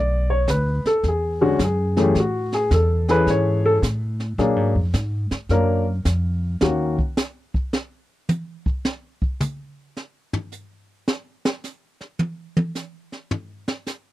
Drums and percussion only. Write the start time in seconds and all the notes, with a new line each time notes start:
0.48 kick, snare, hi-hat pedal
0.86 snare
1.03 brush sweep, kick, snare
1.59 kick, snare, hi-hat pedal
1.97 snare
2.15 brush sweep, kick, snare
2.52 snare
2.71 kick, snare, hi-hat pedal
3.08 snare
3.27 brush sweep, kick, snare
3.83 kick, snare, hi-hat pedal
4.20 snare
4.38 brush sweep, kick, snare
4.94 kick, snare, hi-hat pedal
5.31 snare
5.49 brush sweep, kick, snare
6.05 kick, snare, hi-hat pedal
6.61 snare
6.99 kick
7.17 snare, hi-hat pedal
7.54 kick
7.73 snare
8.29 hi-hat pedal, high tom
8.66 kick
8.85 snare
9.22 kick
9.40 hi-hat pedal, mid tom
9.97 snare
10.33 floor tom
10.52 hi-hat pedal
11.08 snare
11.45 snare
11.64 snare, hi-hat pedal
12.01 snare
12.19 high tom
12.57 high tom
12.75 snare, hi-hat pedal
13.12 snare
13.31 floor tom
13.68 snare
13.86 snare, hi-hat pedal